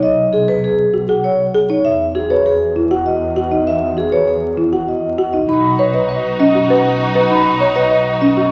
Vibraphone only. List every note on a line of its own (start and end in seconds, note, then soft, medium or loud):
0.03 0.23 D#5 medium
0.33 0.53 G#4 medium
0.48 0.68 B4 medium
0.64 0.84 G#4 medium
1.09 1.29 F#5 medium
1.24 1.44 C#5 medium
1.70 1.89 C#5 medium
1.85 2.05 E5 medium
2.15 2.35 G#4 medium
2.30 2.50 C#5 medium
2.46 2.65 G#4 medium
2.91 3.11 F#5 medium
3.06 3.26 D#5 medium
3.36 3.56 F#5 medium
3.51 3.71 D#5 medium
3.67 3.87 E5 medium
3.98 4.17 G#4 medium
4.12 4.32 C#5 medium
4.27 4.47 G#4 medium
4.73 4.92 F#5 medium
4.88 5.08 D#5 medium
5.18 5.38 F#5 medium
5.33 5.53 D#5 medium
5.49 5.68 B5 medium
5.79 5.99 B4 medium
5.94 6.14 D#5 medium
6.09 6.29 B4 medium
6.40 6.59 D#5 medium
6.55 6.74 C#6 medium
6.70 6.90 F#5 medium
7.00 7.20 C#6 medium
7.15 7.35 F#5 medium
7.30 7.50 B5 medium
7.60 7.80 B4 medium
7.75 7.95 D#5 medium
7.90 8.11 B4 medium
8.21 8.41 D#5 medium
8.36 8.52 C#6 medium